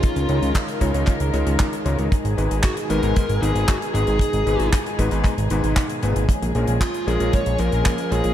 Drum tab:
HH |xxxxxxxxxxxxxxxx|xxxxxxxxxxxxxxxx|xxxxxxxxxxxxxxxx|xxxxxxxxxxxxxxxx|
CP |----x---x---x---|----x-------x---|----x---x---x---|----x-------x---|
BD |o---o-o-o---o---|o---o---o---o---|o---o-o-o---o---|o---o---o---o---|